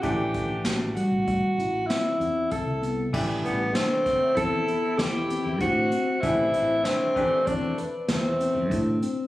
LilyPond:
<<
  \new Staff \with { instrumentName = "Tenor saxophone" } { \time 5/4 \key a \dorian \tempo 4 = 97 g'4 r8 fis'4. e'4 a'8. r16 | r8 b8 c'4 a'4 g'4 fis'4 | e'4 c'4 d'8 r8 c'4. r8 | }
  \new Staff \with { instrumentName = "Tine electric piano" } { \time 5/4 \key a \dorian e'4 fis'8 g8 g8 e'8 c'8 c'4 b8 | e'4 d'8 c'8 c'8 b4 c'8 d'8 c'8 | e'4 d'8 c'8 c'8 b'4 c'8 d'8 c'8 | }
  \new Staff \with { instrumentName = "Grand piano" } { \time 5/4 \key a \dorian <e a d' g'>4. r2. r8 | <e a d' g'>8 r1 r8 | <e a d' g'>4. <e a d' g'>8 r2. | }
  \new Staff \with { instrumentName = "Alto saxophone" } { \time 5/4 \key a \dorian r1 r4 | r8 g8 a4 e'4 e'4 c'4 | c'4 a4 a8 r8 a4. r8 | }
  \new Staff \with { instrumentName = "Fretless electric bass" } { \clef bass \time 5/4 \key a \dorian a,,4 a,,8 r16 a,,8 r16 a,,8 r8 e,8 r16 c,8. | a,,8 a,,8 r4 e,8 r8 e,8. e,16 a,8 r8 | a,,8 a,,8 r4 e,8 r8 e,8. e,16 a,8 r8 | }
  \new DrumStaff \with { instrumentName = "Drums" } \drummode { \time 5/4 <hh bd>8 <hh bd>8 <hh sn>8 hh8 <hh bd>8 hh8 <hh sn>8 hh8 <hh bd>8 hh8 | <cymc bd>8 hh8 <hh sn>8 <hh bd sn>8 <hh bd>8 hh8 <hh sn>8 hh8 <hh bd>8 hh8 | <hh bd>8 hh8 <hh sn>8 <hh bd>8 <hh bd>8 hh8 <hh sn>8 hh8 <hh bd>8 hh8 | }
>>